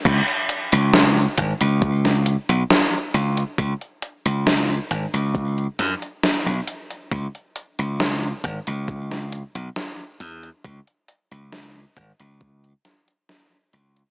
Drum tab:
CC |x---------------|----------------|----------------|----------------|
HH |xxxxxxxxxxxxxxxx|xxxxxxxxxxxxxxxx|xxxxxxxxxxxxxxxx|xxxxxxxxxxxxxxxx|
SD |----o----o--o---|----o-----o-o---|----o----o--o---|----o-----o-o---|
BD |o-----o-o-------|o-------o-------|o-----o-o-------|o-----o-o-------|